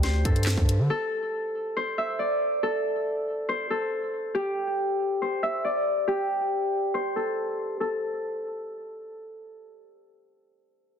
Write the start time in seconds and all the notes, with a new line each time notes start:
Already playing: D2 G4 D5 E5
0.03 C5, snare, closed hi-hat
0.25 G2 A4, kick, closed hi-hat
0.36 closed hi-hat
0.43 snare, clap, closed hi-hat
0.50 closed hi-hat
0.57 G2, kick
0.69 closed hi-hat
0.79 D3
0.90 A4
1.77 C5
1.98 E5
2.19 D5
2.63 A4
3.49 C5
3.70 A4
4.35 G4
5.22 C5
5.43 E5
5.64 D5
6.08 G4
6.94 C5
7.16 A4
7.80 A4